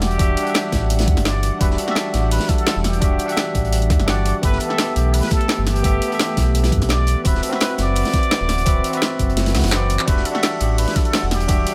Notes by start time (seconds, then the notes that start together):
Already playing: E1 E3 G3 D4 F#4 G4 E5 F#5
0.01 G4, snare, closed hi-hat
0.11 closed hi-hat
0.18 E1 D4 F#4 G4 E5, kick, closed hi-hat
0.37 closed hi-hat
0.43 D4 F#5, closed hi-hat
0.47 G4 E5
0.54 snare, closed hi-hat
0.72 A1, kick, snare, closed hi-hat
0.90 closed hi-hat
0.99 snare, closed hi-hat
1.08 E2, kick, closed hi-hat
1.17 G1, snare, closed hi-hat
1.25 D5, snare, closed hi-hat
1.43 closed hi-hat
1.59 E1 D4 F#4 G4 B4 E5, kick, closed hi-hat
1.70 B4, snare
1.78 A4, closed hi-hat
1.85 D4 F#4, snare
1.89 G4 E5
1.95 snare, closed hi-hat
2.14 A1 G4, snare, closed hi-hat
2.31 B4, closed hi-hat, open hi-hat
2.40 snare, closed hi-hat
2.49 A4, kick, snare, closed hi-hat
2.58 closed hi-hat
2.67 snare, closed hi-hat
2.76 E1
2.84 G4, snare, closed hi-hat
2.93 closed hi-hat
3.01 E1 D4 F#4 G4 E5, kick, closed hi-hat
3.19 closed hi-hat
3.26 D4 F#5, closed hi-hat
3.30 G4 E5
3.37 snare, closed hi-hat
3.55 A1, kick, closed hi-hat
3.65 closed hi-hat
3.73 closed hi-hat
3.82 closed hi-hat
3.90 E2, kick, snare, closed hi-hat
3.99 G1, snare, closed hi-hat
4.06 D4 F#4 G4 D5 F#5, snare, closed hi-hat
4.25 closed hi-hat
4.42 G1 A3 B3 G4 A4 B4 E5, kick, closed hi-hat
4.52 snare
4.60 A4, closed hi-hat
4.67 B3 G4, snare
4.71 A4 E5
4.78 snare, closed hi-hat
4.96 B1 G4, closed hi-hat
5.14 B4, closed hi-hat, open hi-hat
5.23 snare, closed hi-hat
5.31 A4, kick, snare, closed hi-hat
5.41 closed hi-hat
5.48 snare, closed hi-hat
5.58 G1
5.66 G4, snare, closed hi-hat
5.76 closed hi-hat
5.83 G1 B3 G4 A4 E5, kick, closed hi-hat
6.02 closed hi-hat
6.08 B3 G4
6.12 A4 E5, closed hi-hat
6.19 snare, closed hi-hat
6.37 B1, kick, snare, closed hi-hat
6.55 closed hi-hat
6.64 snare, closed hi-hat
6.72 G2, kick, closed hi-hat
6.81 B1, snare, closed hi-hat
6.89 D5, snare, closed hi-hat
7.07 closed hi-hat
7.24 D1 E3 C4 F#4 B4 E5 F#5, kick, closed hi-hat
7.35 snare
7.43 A4, closed hi-hat
7.49 C4 F#4 B4, snare
7.53 B4 E5
7.61 snare, closed hi-hat
7.78 F#1 D5, snare, closed hi-hat
7.96 closed hi-hat, open hi-hat
8.05 snare, closed hi-hat
8.14 kick, snare, closed hi-hat
8.23 closed hi-hat
8.31 snare, closed hi-hat
8.41 D1
8.49 snare, closed hi-hat
8.58 closed hi-hat
8.65 D1 C4 F#4 B4 E5, kick, closed hi-hat
8.84 closed hi-hat
8.90 C4 F#4, closed hi-hat
8.95 B4 E5
9.02 snare, closed hi-hat
9.19 F#1, kick, closed hi-hat
9.30 closed hi-hat
9.37 snare, closed hi-hat
9.46 snare, closed hi-hat
9.55 D2, snare, closed hi-hat
9.59 snare, closed hi-hat
9.64 F#1, snare, closed hi-hat
9.68 C4, snare, closed hi-hat
9.72 F#4 B4 D5 F#5, snare, clap, closed hi-hat
9.90 closed hi-hat
9.99 clap
10.06 E1 G3 D4 F#4 G4 B4 E5, kick, closed hi-hat, ride bell
10.17 snare
10.25 A4, closed hi-hat, ride bell
10.31 D4 F#4, snare
10.36 G4 E5
10.43 snare, closed hi-hat, ride bell
10.61 A1 G4, closed hi-hat, ride bell
10.78 B4, closed hi-hat, open hi-hat, ride bell
10.88 snare, closed hi-hat
10.96 A4, kick, snare, closed hi-hat, ride bell
11.05 closed hi-hat
11.13 snare, closed hi-hat, ride bell
11.23 E1
11.31 G4, snare, closed hi-hat, ride bell
11.40 closed hi-hat
11.47 E1 D4 F#4 G4 E5, kick, closed hi-hat, ride bell
11.67 closed hi-hat, ride bell